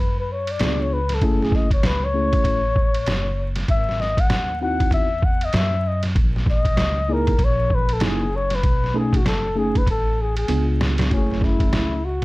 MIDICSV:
0, 0, Header, 1, 5, 480
1, 0, Start_track
1, 0, Tempo, 618557
1, 942, Time_signature, 4, 2, 24, 8
1, 9504, End_track
2, 0, Start_track
2, 0, Title_t, "Flugelhorn"
2, 0, Program_c, 0, 56
2, 0, Note_on_c, 0, 71, 78
2, 139, Note_off_c, 0, 71, 0
2, 155, Note_on_c, 0, 71, 79
2, 249, Note_on_c, 0, 73, 80
2, 261, Note_off_c, 0, 71, 0
2, 397, Note_on_c, 0, 74, 88
2, 409, Note_off_c, 0, 73, 0
2, 633, Note_on_c, 0, 73, 83
2, 645, Note_off_c, 0, 74, 0
2, 725, Note_on_c, 0, 71, 89
2, 737, Note_off_c, 0, 73, 0
2, 885, Note_on_c, 0, 69, 85
2, 897, Note_off_c, 0, 71, 0
2, 1115, Note_on_c, 0, 68, 85
2, 1127, Note_off_c, 0, 69, 0
2, 1208, Note_on_c, 0, 75, 87
2, 1219, Note_off_c, 0, 68, 0
2, 1339, Note_off_c, 0, 75, 0
2, 1346, Note_on_c, 0, 73, 87
2, 1450, Note_on_c, 0, 71, 97
2, 1462, Note_off_c, 0, 73, 0
2, 1586, Note_on_c, 0, 73, 103
2, 1598, Note_off_c, 0, 71, 0
2, 2776, Note_off_c, 0, 73, 0
2, 2871, Note_on_c, 0, 76, 109
2, 3112, Note_on_c, 0, 75, 101
2, 3124, Note_off_c, 0, 76, 0
2, 3260, Note_on_c, 0, 78, 101
2, 3271, Note_off_c, 0, 75, 0
2, 3583, Note_off_c, 0, 78, 0
2, 3588, Note_on_c, 0, 78, 98
2, 3808, Note_off_c, 0, 78, 0
2, 3831, Note_on_c, 0, 76, 112
2, 4070, Note_on_c, 0, 78, 102
2, 4081, Note_off_c, 0, 76, 0
2, 4227, Note_on_c, 0, 75, 104
2, 4239, Note_off_c, 0, 78, 0
2, 4315, Note_on_c, 0, 76, 111
2, 4327, Note_off_c, 0, 75, 0
2, 4559, Note_on_c, 0, 75, 94
2, 4571, Note_off_c, 0, 76, 0
2, 4695, Note_off_c, 0, 75, 0
2, 5047, Note_on_c, 0, 75, 110
2, 5531, Note_on_c, 0, 70, 99
2, 5543, Note_off_c, 0, 75, 0
2, 5777, Note_on_c, 0, 73, 116
2, 5788, Note_off_c, 0, 70, 0
2, 6011, Note_on_c, 0, 71, 105
2, 6023, Note_off_c, 0, 73, 0
2, 6154, Note_on_c, 0, 69, 93
2, 6166, Note_off_c, 0, 71, 0
2, 6244, Note_on_c, 0, 68, 98
2, 6255, Note_off_c, 0, 69, 0
2, 6487, Note_on_c, 0, 73, 101
2, 6499, Note_off_c, 0, 68, 0
2, 6635, Note_on_c, 0, 71, 102
2, 6646, Note_off_c, 0, 73, 0
2, 6966, Note_on_c, 0, 68, 90
2, 6977, Note_off_c, 0, 71, 0
2, 7111, Note_on_c, 0, 66, 83
2, 7123, Note_off_c, 0, 68, 0
2, 7190, Note_off_c, 0, 66, 0
2, 7195, Note_on_c, 0, 69, 92
2, 7436, Note_on_c, 0, 68, 96
2, 7447, Note_off_c, 0, 69, 0
2, 7584, Note_on_c, 0, 71, 91
2, 7596, Note_off_c, 0, 68, 0
2, 7671, Note_off_c, 0, 71, 0
2, 7682, Note_on_c, 0, 69, 95
2, 7924, Note_on_c, 0, 68, 90
2, 7936, Note_off_c, 0, 69, 0
2, 8049, Note_off_c, 0, 68, 0
2, 8054, Note_on_c, 0, 68, 77
2, 8274, Note_off_c, 0, 68, 0
2, 8633, Note_on_c, 0, 61, 88
2, 8876, Note_on_c, 0, 64, 88
2, 8887, Note_off_c, 0, 61, 0
2, 9350, Note_on_c, 0, 66, 83
2, 9362, Note_off_c, 0, 64, 0
2, 9504, Note_off_c, 0, 66, 0
2, 9504, End_track
3, 0, Start_track
3, 0, Title_t, "Tine electric piano"
3, 0, Program_c, 1, 4
3, 465, Note_on_c, 1, 59, 69
3, 468, Note_on_c, 1, 62, 65
3, 472, Note_on_c, 1, 65, 60
3, 477, Note_on_c, 1, 68, 73
3, 761, Note_off_c, 1, 59, 0
3, 763, Note_off_c, 1, 62, 0
3, 765, Note_off_c, 1, 65, 0
3, 767, Note_off_c, 1, 68, 0
3, 948, Note_on_c, 1, 57, 82
3, 951, Note_on_c, 1, 61, 73
3, 953, Note_on_c, 1, 64, 80
3, 960, Note_on_c, 1, 68, 91
3, 1301, Note_off_c, 1, 57, 0
3, 1302, Note_off_c, 1, 61, 0
3, 1303, Note_off_c, 1, 64, 0
3, 1307, Note_off_c, 1, 68, 0
3, 1660, Note_on_c, 1, 57, 63
3, 1663, Note_on_c, 1, 61, 63
3, 1668, Note_on_c, 1, 64, 53
3, 1669, Note_on_c, 1, 68, 69
3, 2017, Note_off_c, 1, 57, 0
3, 2018, Note_off_c, 1, 61, 0
3, 2021, Note_off_c, 1, 64, 0
3, 2021, Note_off_c, 1, 68, 0
3, 3580, Note_on_c, 1, 60, 67
3, 3583, Note_on_c, 1, 63, 66
3, 3587, Note_on_c, 1, 64, 62
3, 3592, Note_on_c, 1, 66, 76
3, 3936, Note_off_c, 1, 60, 0
3, 3938, Note_off_c, 1, 63, 0
3, 3940, Note_off_c, 1, 64, 0
3, 3943, Note_off_c, 1, 66, 0
3, 5499, Note_on_c, 1, 58, 67
3, 5501, Note_on_c, 1, 63, 68
3, 5506, Note_on_c, 1, 64, 70
3, 5506, Note_on_c, 1, 68, 90
3, 5683, Note_off_c, 1, 58, 0
3, 5684, Note_off_c, 1, 63, 0
3, 5687, Note_off_c, 1, 64, 0
3, 5687, Note_off_c, 1, 68, 0
3, 6216, Note_on_c, 1, 58, 79
3, 6217, Note_on_c, 1, 63, 77
3, 6222, Note_on_c, 1, 64, 75
3, 6224, Note_on_c, 1, 68, 95
3, 6402, Note_off_c, 1, 58, 0
3, 6402, Note_off_c, 1, 63, 0
3, 6405, Note_off_c, 1, 64, 0
3, 6406, Note_off_c, 1, 68, 0
3, 6936, Note_on_c, 1, 57, 77
3, 6940, Note_on_c, 1, 61, 67
3, 6941, Note_on_c, 1, 63, 77
3, 6949, Note_on_c, 1, 68, 90
3, 7122, Note_off_c, 1, 57, 0
3, 7124, Note_off_c, 1, 61, 0
3, 7124, Note_off_c, 1, 63, 0
3, 7128, Note_off_c, 1, 68, 0
3, 7414, Note_on_c, 1, 57, 78
3, 7419, Note_on_c, 1, 61, 64
3, 7420, Note_on_c, 1, 63, 61
3, 7424, Note_on_c, 1, 68, 80
3, 7601, Note_off_c, 1, 57, 0
3, 7603, Note_off_c, 1, 61, 0
3, 7604, Note_off_c, 1, 63, 0
3, 7605, Note_off_c, 1, 68, 0
3, 8135, Note_on_c, 1, 59, 78
3, 8139, Note_on_c, 1, 62, 61
3, 8141, Note_on_c, 1, 65, 65
3, 8146, Note_on_c, 1, 68, 88
3, 8616, Note_on_c, 1, 57, 71
3, 8618, Note_on_c, 1, 61, 64
3, 8619, Note_off_c, 1, 59, 0
3, 8620, Note_off_c, 1, 62, 0
3, 8622, Note_off_c, 1, 65, 0
3, 8623, Note_on_c, 1, 64, 63
3, 8624, Note_off_c, 1, 68, 0
3, 8624, Note_on_c, 1, 66, 67
3, 8674, Note_on_c, 1, 68, 82
3, 8684, Note_off_c, 1, 66, 0
3, 9301, Note_off_c, 1, 57, 0
3, 9302, Note_off_c, 1, 61, 0
3, 9304, Note_off_c, 1, 64, 0
3, 9330, Note_off_c, 1, 68, 0
3, 9504, End_track
4, 0, Start_track
4, 0, Title_t, "Upright bass"
4, 0, Program_c, 2, 32
4, 0, Note_on_c, 2, 42, 86
4, 437, Note_off_c, 2, 42, 0
4, 463, Note_on_c, 2, 37, 104
4, 918, Note_off_c, 2, 37, 0
4, 944, Note_on_c, 2, 30, 104
4, 1399, Note_off_c, 2, 30, 0
4, 1422, Note_on_c, 2, 37, 97
4, 1878, Note_off_c, 2, 37, 0
4, 1897, Note_on_c, 2, 33, 91
4, 2355, Note_off_c, 2, 33, 0
4, 2384, Note_on_c, 2, 30, 106
4, 2839, Note_off_c, 2, 30, 0
4, 2861, Note_on_c, 2, 32, 97
4, 3318, Note_off_c, 2, 32, 0
4, 3334, Note_on_c, 2, 39, 95
4, 3794, Note_off_c, 2, 39, 0
4, 3808, Note_on_c, 2, 40, 111
4, 4271, Note_off_c, 2, 40, 0
4, 4295, Note_on_c, 2, 42, 113
4, 4754, Note_off_c, 2, 42, 0
4, 4777, Note_on_c, 2, 34, 112
4, 5255, Note_off_c, 2, 34, 0
4, 5255, Note_on_c, 2, 37, 98
4, 5714, Note_off_c, 2, 37, 0
4, 5732, Note_on_c, 2, 34, 104
4, 6193, Note_off_c, 2, 34, 0
4, 6216, Note_on_c, 2, 30, 117
4, 6675, Note_off_c, 2, 30, 0
4, 6702, Note_on_c, 2, 35, 107
4, 7158, Note_off_c, 2, 35, 0
4, 7178, Note_on_c, 2, 30, 91
4, 7636, Note_off_c, 2, 30, 0
4, 7657, Note_on_c, 2, 33, 105
4, 8115, Note_off_c, 2, 33, 0
4, 8138, Note_on_c, 2, 37, 122
4, 8596, Note_off_c, 2, 37, 0
4, 8621, Note_on_c, 2, 30, 100
4, 9077, Note_off_c, 2, 30, 0
4, 9099, Note_on_c, 2, 37, 89
4, 9504, Note_off_c, 2, 37, 0
4, 9504, End_track
5, 0, Start_track
5, 0, Title_t, "Drums"
5, 367, Note_on_c, 9, 51, 73
5, 445, Note_off_c, 9, 51, 0
5, 461, Note_on_c, 9, 44, 54
5, 461, Note_on_c, 9, 51, 77
5, 470, Note_on_c, 9, 38, 127
5, 539, Note_off_c, 9, 44, 0
5, 539, Note_off_c, 9, 51, 0
5, 547, Note_off_c, 9, 38, 0
5, 847, Note_on_c, 9, 51, 73
5, 851, Note_on_c, 9, 38, 39
5, 925, Note_off_c, 9, 51, 0
5, 929, Note_off_c, 9, 38, 0
5, 943, Note_on_c, 9, 36, 120
5, 943, Note_on_c, 9, 51, 73
5, 1021, Note_off_c, 9, 36, 0
5, 1021, Note_off_c, 9, 51, 0
5, 1105, Note_on_c, 9, 38, 35
5, 1179, Note_on_c, 9, 36, 100
5, 1183, Note_off_c, 9, 38, 0
5, 1184, Note_on_c, 9, 38, 37
5, 1256, Note_off_c, 9, 36, 0
5, 1262, Note_off_c, 9, 38, 0
5, 1324, Note_on_c, 9, 36, 108
5, 1329, Note_on_c, 9, 51, 73
5, 1401, Note_off_c, 9, 36, 0
5, 1406, Note_off_c, 9, 51, 0
5, 1422, Note_on_c, 9, 38, 127
5, 1424, Note_on_c, 9, 44, 48
5, 1424, Note_on_c, 9, 51, 72
5, 1500, Note_off_c, 9, 38, 0
5, 1501, Note_off_c, 9, 44, 0
5, 1501, Note_off_c, 9, 51, 0
5, 1806, Note_on_c, 9, 51, 61
5, 1808, Note_on_c, 9, 36, 91
5, 1883, Note_off_c, 9, 51, 0
5, 1886, Note_off_c, 9, 36, 0
5, 1894, Note_on_c, 9, 36, 86
5, 1900, Note_on_c, 9, 51, 80
5, 1972, Note_off_c, 9, 36, 0
5, 1977, Note_off_c, 9, 51, 0
5, 2139, Note_on_c, 9, 36, 98
5, 2217, Note_off_c, 9, 36, 0
5, 2285, Note_on_c, 9, 51, 70
5, 2362, Note_off_c, 9, 51, 0
5, 2378, Note_on_c, 9, 44, 56
5, 2378, Note_on_c, 9, 51, 83
5, 2387, Note_on_c, 9, 38, 126
5, 2456, Note_off_c, 9, 44, 0
5, 2456, Note_off_c, 9, 51, 0
5, 2464, Note_off_c, 9, 38, 0
5, 2759, Note_on_c, 9, 51, 73
5, 2763, Note_on_c, 9, 38, 39
5, 2837, Note_off_c, 9, 51, 0
5, 2841, Note_off_c, 9, 38, 0
5, 2859, Note_on_c, 9, 36, 102
5, 2859, Note_on_c, 9, 51, 66
5, 2937, Note_off_c, 9, 36, 0
5, 2937, Note_off_c, 9, 51, 0
5, 3018, Note_on_c, 9, 38, 37
5, 3096, Note_off_c, 9, 38, 0
5, 3102, Note_on_c, 9, 38, 36
5, 3180, Note_off_c, 9, 38, 0
5, 3239, Note_on_c, 9, 36, 94
5, 3243, Note_on_c, 9, 51, 73
5, 3317, Note_off_c, 9, 36, 0
5, 3321, Note_off_c, 9, 51, 0
5, 3336, Note_on_c, 9, 38, 114
5, 3337, Note_on_c, 9, 44, 53
5, 3337, Note_on_c, 9, 51, 65
5, 3413, Note_off_c, 9, 38, 0
5, 3415, Note_off_c, 9, 44, 0
5, 3415, Note_off_c, 9, 51, 0
5, 3725, Note_on_c, 9, 36, 85
5, 3726, Note_on_c, 9, 51, 57
5, 3803, Note_off_c, 9, 36, 0
5, 3803, Note_off_c, 9, 51, 0
5, 3810, Note_on_c, 9, 36, 84
5, 3820, Note_on_c, 9, 51, 74
5, 3888, Note_off_c, 9, 36, 0
5, 3897, Note_off_c, 9, 51, 0
5, 4054, Note_on_c, 9, 36, 105
5, 4132, Note_off_c, 9, 36, 0
5, 4199, Note_on_c, 9, 51, 72
5, 4277, Note_off_c, 9, 51, 0
5, 4289, Note_on_c, 9, 44, 54
5, 4289, Note_on_c, 9, 51, 78
5, 4298, Note_on_c, 9, 38, 125
5, 4367, Note_off_c, 9, 44, 0
5, 4367, Note_off_c, 9, 51, 0
5, 4375, Note_off_c, 9, 38, 0
5, 4677, Note_on_c, 9, 51, 75
5, 4681, Note_on_c, 9, 38, 36
5, 4755, Note_off_c, 9, 51, 0
5, 4759, Note_off_c, 9, 38, 0
5, 4777, Note_on_c, 9, 36, 119
5, 4778, Note_on_c, 9, 51, 73
5, 4854, Note_off_c, 9, 36, 0
5, 4856, Note_off_c, 9, 51, 0
5, 4936, Note_on_c, 9, 38, 33
5, 5014, Note_off_c, 9, 38, 0
5, 5014, Note_on_c, 9, 36, 90
5, 5024, Note_on_c, 9, 38, 34
5, 5092, Note_off_c, 9, 36, 0
5, 5101, Note_off_c, 9, 38, 0
5, 5158, Note_on_c, 9, 36, 102
5, 5163, Note_on_c, 9, 51, 75
5, 5236, Note_off_c, 9, 36, 0
5, 5241, Note_off_c, 9, 51, 0
5, 5255, Note_on_c, 9, 38, 119
5, 5257, Note_on_c, 9, 44, 48
5, 5257, Note_on_c, 9, 51, 71
5, 5332, Note_off_c, 9, 38, 0
5, 5334, Note_off_c, 9, 44, 0
5, 5334, Note_off_c, 9, 51, 0
5, 5643, Note_on_c, 9, 51, 57
5, 5646, Note_on_c, 9, 36, 96
5, 5720, Note_off_c, 9, 51, 0
5, 5724, Note_off_c, 9, 36, 0
5, 5730, Note_on_c, 9, 36, 91
5, 5734, Note_on_c, 9, 51, 76
5, 5808, Note_off_c, 9, 36, 0
5, 5812, Note_off_c, 9, 51, 0
5, 5977, Note_on_c, 9, 36, 97
5, 6054, Note_off_c, 9, 36, 0
5, 6121, Note_on_c, 9, 51, 70
5, 6198, Note_off_c, 9, 51, 0
5, 6209, Note_on_c, 9, 44, 58
5, 6209, Note_on_c, 9, 51, 78
5, 6218, Note_on_c, 9, 38, 126
5, 6287, Note_off_c, 9, 44, 0
5, 6287, Note_off_c, 9, 51, 0
5, 6295, Note_off_c, 9, 38, 0
5, 6598, Note_on_c, 9, 51, 76
5, 6603, Note_on_c, 9, 38, 38
5, 6676, Note_off_c, 9, 51, 0
5, 6680, Note_off_c, 9, 38, 0
5, 6700, Note_on_c, 9, 36, 114
5, 6700, Note_on_c, 9, 51, 77
5, 6778, Note_off_c, 9, 36, 0
5, 6778, Note_off_c, 9, 51, 0
5, 6859, Note_on_c, 9, 38, 34
5, 6937, Note_off_c, 9, 38, 0
5, 7083, Note_on_c, 9, 36, 104
5, 7092, Note_on_c, 9, 51, 75
5, 7161, Note_off_c, 9, 36, 0
5, 7170, Note_off_c, 9, 51, 0
5, 7184, Note_on_c, 9, 38, 112
5, 7186, Note_on_c, 9, 44, 54
5, 7186, Note_on_c, 9, 51, 77
5, 7261, Note_off_c, 9, 38, 0
5, 7263, Note_off_c, 9, 44, 0
5, 7263, Note_off_c, 9, 51, 0
5, 7569, Note_on_c, 9, 36, 96
5, 7569, Note_on_c, 9, 51, 56
5, 7646, Note_off_c, 9, 51, 0
5, 7647, Note_off_c, 9, 36, 0
5, 7654, Note_on_c, 9, 36, 91
5, 7662, Note_on_c, 9, 51, 77
5, 7732, Note_off_c, 9, 36, 0
5, 7739, Note_off_c, 9, 51, 0
5, 8044, Note_on_c, 9, 51, 66
5, 8121, Note_off_c, 9, 51, 0
5, 8135, Note_on_c, 9, 44, 57
5, 8135, Note_on_c, 9, 51, 82
5, 8212, Note_off_c, 9, 44, 0
5, 8212, Note_off_c, 9, 51, 0
5, 8388, Note_on_c, 9, 38, 108
5, 8465, Note_off_c, 9, 38, 0
5, 8521, Note_on_c, 9, 51, 78
5, 8530, Note_on_c, 9, 38, 102
5, 8599, Note_off_c, 9, 51, 0
5, 8608, Note_off_c, 9, 38, 0
5, 8622, Note_on_c, 9, 36, 98
5, 8623, Note_on_c, 9, 51, 67
5, 8700, Note_off_c, 9, 36, 0
5, 8701, Note_off_c, 9, 51, 0
5, 8781, Note_on_c, 9, 38, 33
5, 8856, Note_on_c, 9, 36, 91
5, 8858, Note_off_c, 9, 38, 0
5, 8861, Note_on_c, 9, 38, 35
5, 8934, Note_off_c, 9, 36, 0
5, 8939, Note_off_c, 9, 38, 0
5, 9000, Note_on_c, 9, 36, 96
5, 9003, Note_on_c, 9, 51, 66
5, 9077, Note_off_c, 9, 36, 0
5, 9081, Note_off_c, 9, 51, 0
5, 9100, Note_on_c, 9, 38, 100
5, 9102, Note_on_c, 9, 44, 48
5, 9102, Note_on_c, 9, 51, 64
5, 9178, Note_off_c, 9, 38, 0
5, 9180, Note_off_c, 9, 44, 0
5, 9180, Note_off_c, 9, 51, 0
5, 9504, End_track
0, 0, End_of_file